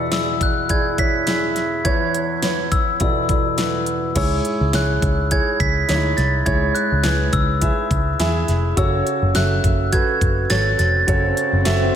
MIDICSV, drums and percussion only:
0, 0, Header, 1, 2, 480
1, 0, Start_track
1, 0, Tempo, 576923
1, 1539, Time_signature, 4, 2, 24, 8
1, 9947, End_track
2, 0, Start_track
2, 0, Title_t, "Drums"
2, 97, Note_on_c, 9, 38, 97
2, 97, Note_on_c, 9, 42, 74
2, 180, Note_off_c, 9, 38, 0
2, 180, Note_off_c, 9, 42, 0
2, 340, Note_on_c, 9, 36, 67
2, 341, Note_on_c, 9, 42, 65
2, 423, Note_off_c, 9, 36, 0
2, 424, Note_off_c, 9, 42, 0
2, 577, Note_on_c, 9, 42, 79
2, 580, Note_on_c, 9, 36, 72
2, 660, Note_off_c, 9, 42, 0
2, 663, Note_off_c, 9, 36, 0
2, 817, Note_on_c, 9, 42, 64
2, 818, Note_on_c, 9, 36, 74
2, 901, Note_off_c, 9, 36, 0
2, 901, Note_off_c, 9, 42, 0
2, 1055, Note_on_c, 9, 42, 80
2, 1058, Note_on_c, 9, 38, 91
2, 1138, Note_off_c, 9, 42, 0
2, 1141, Note_off_c, 9, 38, 0
2, 1297, Note_on_c, 9, 38, 28
2, 1297, Note_on_c, 9, 42, 56
2, 1380, Note_off_c, 9, 38, 0
2, 1380, Note_off_c, 9, 42, 0
2, 1538, Note_on_c, 9, 42, 81
2, 1540, Note_on_c, 9, 36, 95
2, 1621, Note_off_c, 9, 42, 0
2, 1623, Note_off_c, 9, 36, 0
2, 1784, Note_on_c, 9, 42, 58
2, 1868, Note_off_c, 9, 42, 0
2, 2017, Note_on_c, 9, 42, 79
2, 2018, Note_on_c, 9, 38, 92
2, 2101, Note_off_c, 9, 38, 0
2, 2101, Note_off_c, 9, 42, 0
2, 2260, Note_on_c, 9, 36, 67
2, 2260, Note_on_c, 9, 42, 64
2, 2343, Note_off_c, 9, 42, 0
2, 2344, Note_off_c, 9, 36, 0
2, 2496, Note_on_c, 9, 42, 80
2, 2500, Note_on_c, 9, 36, 74
2, 2579, Note_off_c, 9, 42, 0
2, 2583, Note_off_c, 9, 36, 0
2, 2737, Note_on_c, 9, 42, 56
2, 2738, Note_on_c, 9, 36, 74
2, 2820, Note_off_c, 9, 42, 0
2, 2821, Note_off_c, 9, 36, 0
2, 2977, Note_on_c, 9, 42, 77
2, 2980, Note_on_c, 9, 38, 86
2, 3060, Note_off_c, 9, 42, 0
2, 3063, Note_off_c, 9, 38, 0
2, 3215, Note_on_c, 9, 42, 53
2, 3298, Note_off_c, 9, 42, 0
2, 3457, Note_on_c, 9, 42, 79
2, 3458, Note_on_c, 9, 49, 76
2, 3459, Note_on_c, 9, 36, 97
2, 3541, Note_off_c, 9, 42, 0
2, 3541, Note_off_c, 9, 49, 0
2, 3543, Note_off_c, 9, 36, 0
2, 3701, Note_on_c, 9, 42, 56
2, 3784, Note_off_c, 9, 42, 0
2, 3938, Note_on_c, 9, 38, 96
2, 3938, Note_on_c, 9, 42, 82
2, 4021, Note_off_c, 9, 38, 0
2, 4021, Note_off_c, 9, 42, 0
2, 4180, Note_on_c, 9, 36, 69
2, 4180, Note_on_c, 9, 42, 64
2, 4263, Note_off_c, 9, 36, 0
2, 4263, Note_off_c, 9, 42, 0
2, 4418, Note_on_c, 9, 42, 92
2, 4421, Note_on_c, 9, 36, 70
2, 4501, Note_off_c, 9, 42, 0
2, 4504, Note_off_c, 9, 36, 0
2, 4660, Note_on_c, 9, 36, 76
2, 4661, Note_on_c, 9, 42, 63
2, 4743, Note_off_c, 9, 36, 0
2, 4745, Note_off_c, 9, 42, 0
2, 4898, Note_on_c, 9, 42, 82
2, 4901, Note_on_c, 9, 38, 90
2, 4981, Note_off_c, 9, 42, 0
2, 4984, Note_off_c, 9, 38, 0
2, 5139, Note_on_c, 9, 38, 29
2, 5140, Note_on_c, 9, 42, 57
2, 5222, Note_off_c, 9, 38, 0
2, 5223, Note_off_c, 9, 42, 0
2, 5378, Note_on_c, 9, 42, 78
2, 5379, Note_on_c, 9, 36, 104
2, 5461, Note_off_c, 9, 42, 0
2, 5462, Note_off_c, 9, 36, 0
2, 5620, Note_on_c, 9, 42, 65
2, 5703, Note_off_c, 9, 42, 0
2, 5854, Note_on_c, 9, 38, 108
2, 5854, Note_on_c, 9, 42, 80
2, 5937, Note_off_c, 9, 38, 0
2, 5937, Note_off_c, 9, 42, 0
2, 6096, Note_on_c, 9, 42, 70
2, 6099, Note_on_c, 9, 36, 78
2, 6179, Note_off_c, 9, 42, 0
2, 6182, Note_off_c, 9, 36, 0
2, 6336, Note_on_c, 9, 42, 92
2, 6339, Note_on_c, 9, 36, 73
2, 6419, Note_off_c, 9, 42, 0
2, 6423, Note_off_c, 9, 36, 0
2, 6579, Note_on_c, 9, 36, 78
2, 6581, Note_on_c, 9, 42, 63
2, 6662, Note_off_c, 9, 36, 0
2, 6664, Note_off_c, 9, 42, 0
2, 6819, Note_on_c, 9, 42, 89
2, 6822, Note_on_c, 9, 38, 96
2, 6902, Note_off_c, 9, 42, 0
2, 6905, Note_off_c, 9, 38, 0
2, 7058, Note_on_c, 9, 38, 31
2, 7058, Note_on_c, 9, 42, 60
2, 7141, Note_off_c, 9, 38, 0
2, 7141, Note_off_c, 9, 42, 0
2, 7299, Note_on_c, 9, 36, 105
2, 7299, Note_on_c, 9, 42, 85
2, 7382, Note_off_c, 9, 36, 0
2, 7382, Note_off_c, 9, 42, 0
2, 7543, Note_on_c, 9, 42, 62
2, 7626, Note_off_c, 9, 42, 0
2, 7778, Note_on_c, 9, 38, 100
2, 7778, Note_on_c, 9, 42, 81
2, 7861, Note_off_c, 9, 38, 0
2, 7861, Note_off_c, 9, 42, 0
2, 8020, Note_on_c, 9, 36, 71
2, 8021, Note_on_c, 9, 42, 69
2, 8104, Note_off_c, 9, 36, 0
2, 8104, Note_off_c, 9, 42, 0
2, 8258, Note_on_c, 9, 42, 92
2, 8260, Note_on_c, 9, 36, 78
2, 8341, Note_off_c, 9, 42, 0
2, 8343, Note_off_c, 9, 36, 0
2, 8498, Note_on_c, 9, 36, 76
2, 8500, Note_on_c, 9, 42, 66
2, 8581, Note_off_c, 9, 36, 0
2, 8583, Note_off_c, 9, 42, 0
2, 8735, Note_on_c, 9, 42, 82
2, 8737, Note_on_c, 9, 38, 95
2, 8818, Note_off_c, 9, 42, 0
2, 8821, Note_off_c, 9, 38, 0
2, 8977, Note_on_c, 9, 38, 31
2, 8977, Note_on_c, 9, 42, 61
2, 9060, Note_off_c, 9, 38, 0
2, 9061, Note_off_c, 9, 42, 0
2, 9218, Note_on_c, 9, 42, 85
2, 9219, Note_on_c, 9, 36, 108
2, 9302, Note_off_c, 9, 36, 0
2, 9302, Note_off_c, 9, 42, 0
2, 9461, Note_on_c, 9, 42, 65
2, 9545, Note_off_c, 9, 42, 0
2, 9696, Note_on_c, 9, 38, 110
2, 9696, Note_on_c, 9, 42, 83
2, 9779, Note_off_c, 9, 38, 0
2, 9779, Note_off_c, 9, 42, 0
2, 9947, End_track
0, 0, End_of_file